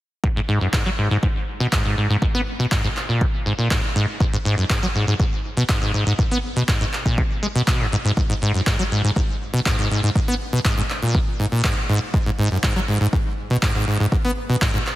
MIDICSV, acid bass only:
0, 0, Header, 1, 2, 480
1, 0, Start_track
1, 0, Key_signature, 5, "minor"
1, 0, Tempo, 495868
1, 229, Time_signature, 4, 2, 24, 8
1, 14476, End_track
2, 0, Start_track
2, 0, Title_t, "Acid bass"
2, 0, Program_c, 0, 38
2, 230, Note_on_c, 0, 44, 79
2, 270, Note_off_c, 0, 44, 0
2, 351, Note_on_c, 0, 44, 97
2, 390, Note_off_c, 0, 44, 0
2, 471, Note_on_c, 0, 44, 94
2, 570, Note_off_c, 0, 44, 0
2, 591, Note_on_c, 0, 42, 72
2, 656, Note_off_c, 0, 42, 0
2, 710, Note_on_c, 0, 44, 81
2, 809, Note_off_c, 0, 44, 0
2, 831, Note_on_c, 0, 54, 97
2, 870, Note_off_c, 0, 54, 0
2, 950, Note_on_c, 0, 44, 75
2, 1050, Note_off_c, 0, 44, 0
2, 1071, Note_on_c, 0, 44, 99
2, 1137, Note_off_c, 0, 44, 0
2, 1191, Note_on_c, 0, 44, 78
2, 1230, Note_off_c, 0, 44, 0
2, 1551, Note_on_c, 0, 47, 95
2, 1616, Note_off_c, 0, 47, 0
2, 1671, Note_on_c, 0, 44, 77
2, 1770, Note_off_c, 0, 44, 0
2, 1791, Note_on_c, 0, 44, 72
2, 1889, Note_off_c, 0, 44, 0
2, 1911, Note_on_c, 0, 44, 76
2, 2010, Note_off_c, 0, 44, 0
2, 2030, Note_on_c, 0, 44, 95
2, 2096, Note_off_c, 0, 44, 0
2, 2150, Note_on_c, 0, 44, 80
2, 2190, Note_off_c, 0, 44, 0
2, 2271, Note_on_c, 0, 59, 98
2, 2336, Note_off_c, 0, 59, 0
2, 2510, Note_on_c, 0, 47, 96
2, 2576, Note_off_c, 0, 47, 0
2, 2630, Note_on_c, 0, 44, 80
2, 2730, Note_off_c, 0, 44, 0
2, 2750, Note_on_c, 0, 44, 98
2, 2790, Note_off_c, 0, 44, 0
2, 2991, Note_on_c, 0, 46, 74
2, 3110, Note_on_c, 0, 49, 98
2, 3124, Note_off_c, 0, 46, 0
2, 3150, Note_off_c, 0, 49, 0
2, 3349, Note_on_c, 0, 44, 73
2, 3416, Note_off_c, 0, 44, 0
2, 3470, Note_on_c, 0, 46, 73
2, 3569, Note_off_c, 0, 46, 0
2, 3830, Note_on_c, 0, 44, 100
2, 3930, Note_off_c, 0, 44, 0
2, 4071, Note_on_c, 0, 44, 78
2, 4110, Note_off_c, 0, 44, 0
2, 4192, Note_on_c, 0, 44, 96
2, 4231, Note_off_c, 0, 44, 0
2, 4311, Note_on_c, 0, 44, 96
2, 4410, Note_off_c, 0, 44, 0
2, 4432, Note_on_c, 0, 42, 71
2, 4497, Note_off_c, 0, 42, 0
2, 4550, Note_on_c, 0, 44, 80
2, 4650, Note_off_c, 0, 44, 0
2, 4672, Note_on_c, 0, 54, 96
2, 4710, Note_off_c, 0, 54, 0
2, 4791, Note_on_c, 0, 44, 72
2, 4890, Note_off_c, 0, 44, 0
2, 4911, Note_on_c, 0, 44, 99
2, 4977, Note_off_c, 0, 44, 0
2, 5030, Note_on_c, 0, 44, 81
2, 5070, Note_off_c, 0, 44, 0
2, 5390, Note_on_c, 0, 47, 98
2, 5456, Note_off_c, 0, 47, 0
2, 5510, Note_on_c, 0, 44, 78
2, 5609, Note_off_c, 0, 44, 0
2, 5630, Note_on_c, 0, 44, 72
2, 5729, Note_off_c, 0, 44, 0
2, 5750, Note_on_c, 0, 44, 74
2, 5850, Note_off_c, 0, 44, 0
2, 5871, Note_on_c, 0, 44, 98
2, 5936, Note_off_c, 0, 44, 0
2, 5990, Note_on_c, 0, 44, 80
2, 6030, Note_off_c, 0, 44, 0
2, 6112, Note_on_c, 0, 59, 95
2, 6177, Note_off_c, 0, 59, 0
2, 6352, Note_on_c, 0, 47, 96
2, 6417, Note_off_c, 0, 47, 0
2, 6471, Note_on_c, 0, 44, 81
2, 6570, Note_off_c, 0, 44, 0
2, 6591, Note_on_c, 0, 44, 94
2, 6630, Note_off_c, 0, 44, 0
2, 6831, Note_on_c, 0, 46, 74
2, 6950, Note_on_c, 0, 49, 98
2, 6964, Note_off_c, 0, 46, 0
2, 6990, Note_off_c, 0, 49, 0
2, 7190, Note_on_c, 0, 56, 72
2, 7230, Note_off_c, 0, 56, 0
2, 7311, Note_on_c, 0, 47, 97
2, 7376, Note_off_c, 0, 47, 0
2, 7430, Note_on_c, 0, 47, 77
2, 7552, Note_on_c, 0, 44, 96
2, 7566, Note_off_c, 0, 47, 0
2, 7617, Note_off_c, 0, 44, 0
2, 7671, Note_on_c, 0, 44, 98
2, 7710, Note_off_c, 0, 44, 0
2, 7790, Note_on_c, 0, 44, 97
2, 7856, Note_off_c, 0, 44, 0
2, 7910, Note_on_c, 0, 44, 79
2, 7950, Note_off_c, 0, 44, 0
2, 8031, Note_on_c, 0, 44, 96
2, 8070, Note_off_c, 0, 44, 0
2, 8150, Note_on_c, 0, 44, 97
2, 8250, Note_off_c, 0, 44, 0
2, 8270, Note_on_c, 0, 42, 70
2, 8336, Note_off_c, 0, 42, 0
2, 8390, Note_on_c, 0, 44, 79
2, 8489, Note_off_c, 0, 44, 0
2, 8511, Note_on_c, 0, 54, 96
2, 8550, Note_off_c, 0, 54, 0
2, 8630, Note_on_c, 0, 44, 74
2, 8730, Note_off_c, 0, 44, 0
2, 8751, Note_on_c, 0, 44, 99
2, 8816, Note_off_c, 0, 44, 0
2, 8870, Note_on_c, 0, 44, 80
2, 8910, Note_off_c, 0, 44, 0
2, 9230, Note_on_c, 0, 47, 99
2, 9296, Note_off_c, 0, 47, 0
2, 9351, Note_on_c, 0, 44, 78
2, 9450, Note_off_c, 0, 44, 0
2, 9472, Note_on_c, 0, 44, 73
2, 9569, Note_off_c, 0, 44, 0
2, 9591, Note_on_c, 0, 44, 76
2, 9690, Note_off_c, 0, 44, 0
2, 9711, Note_on_c, 0, 44, 96
2, 9777, Note_off_c, 0, 44, 0
2, 9831, Note_on_c, 0, 44, 83
2, 9870, Note_off_c, 0, 44, 0
2, 9951, Note_on_c, 0, 59, 98
2, 10017, Note_off_c, 0, 59, 0
2, 10192, Note_on_c, 0, 47, 97
2, 10257, Note_off_c, 0, 47, 0
2, 10311, Note_on_c, 0, 44, 81
2, 10410, Note_off_c, 0, 44, 0
2, 10431, Note_on_c, 0, 44, 99
2, 10470, Note_off_c, 0, 44, 0
2, 10672, Note_on_c, 0, 46, 75
2, 10791, Note_on_c, 0, 49, 98
2, 10805, Note_off_c, 0, 46, 0
2, 10830, Note_off_c, 0, 49, 0
2, 11031, Note_on_c, 0, 44, 73
2, 11097, Note_off_c, 0, 44, 0
2, 11151, Note_on_c, 0, 46, 74
2, 11249, Note_off_c, 0, 46, 0
2, 11511, Note_on_c, 0, 44, 101
2, 11610, Note_off_c, 0, 44, 0
2, 11750, Note_on_c, 0, 44, 80
2, 11790, Note_off_c, 0, 44, 0
2, 11871, Note_on_c, 0, 44, 97
2, 11910, Note_off_c, 0, 44, 0
2, 11989, Note_on_c, 0, 44, 98
2, 12089, Note_off_c, 0, 44, 0
2, 12111, Note_on_c, 0, 42, 70
2, 12176, Note_off_c, 0, 42, 0
2, 12230, Note_on_c, 0, 44, 80
2, 12329, Note_off_c, 0, 44, 0
2, 12351, Note_on_c, 0, 54, 97
2, 12390, Note_off_c, 0, 54, 0
2, 12470, Note_on_c, 0, 44, 75
2, 12569, Note_off_c, 0, 44, 0
2, 12590, Note_on_c, 0, 44, 100
2, 12656, Note_off_c, 0, 44, 0
2, 12710, Note_on_c, 0, 44, 78
2, 12750, Note_off_c, 0, 44, 0
2, 13071, Note_on_c, 0, 47, 98
2, 13136, Note_off_c, 0, 47, 0
2, 13190, Note_on_c, 0, 44, 78
2, 13289, Note_off_c, 0, 44, 0
2, 13311, Note_on_c, 0, 44, 75
2, 13409, Note_off_c, 0, 44, 0
2, 13430, Note_on_c, 0, 44, 78
2, 13529, Note_off_c, 0, 44, 0
2, 13550, Note_on_c, 0, 44, 98
2, 13616, Note_off_c, 0, 44, 0
2, 13670, Note_on_c, 0, 44, 80
2, 13710, Note_off_c, 0, 44, 0
2, 13791, Note_on_c, 0, 59, 99
2, 13856, Note_off_c, 0, 59, 0
2, 14030, Note_on_c, 0, 47, 95
2, 14096, Note_off_c, 0, 47, 0
2, 14149, Note_on_c, 0, 44, 83
2, 14249, Note_off_c, 0, 44, 0
2, 14269, Note_on_c, 0, 44, 93
2, 14309, Note_off_c, 0, 44, 0
2, 14476, End_track
0, 0, End_of_file